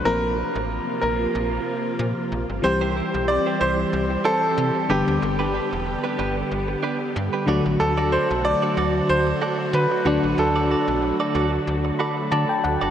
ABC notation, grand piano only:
X:1
M:4/4
L:1/8
Q:"Swing 16ths" 1/4=93
K:Dmix
V:1 name="Grand piano"
_B3 B4 z | c2 d c2 A2 G- | G6- G z | A c d2 c2 B2 |
A6 z2 |]